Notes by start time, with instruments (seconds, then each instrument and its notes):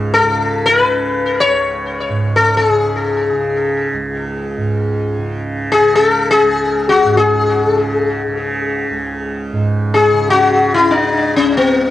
Already playing: tanpura C#2 G#2 C#3
0.14 sitar A4
0.23 tanpura C#3
0.66 sitar B4
0.83 tanpura C#3
1.40 sitar C#5
1.47 tanpura C#2
2.09 tanpura G#2
2.36 sitar A4
2.57 sitar A4
2.68 tanpura C#3, sitar G#4
3.33 tanpura C#3
3.93 tanpura C#2
4.57 tanpura G#2
5.19 tanpura C#3
5.72 sitar G#4
5.80 tanpura C#3
5.95 sitar G#4
6.06 sitar A4
6.31 sitar G#4
6.42 tanpura C#2
6.89 sitar F#4
7.04 tanpura G#2
7.17 sitar G#4
7.66 tanpura C#3, sitar A4
7.81 sitar G#4
7.97 sitar A4
8.09 sitar G#4
8.28 tanpura C#3
8.90 tanpura C#2
9.52 tanpura G#2
9.94 sitar G#4
10.14 tanpura C#3
10.30 sitar F#4
10.74 tanpura C#3, sitar E4
10.91 sitar D4
11.36 tanpura C#2, sitar C#4
11.57 sitar B3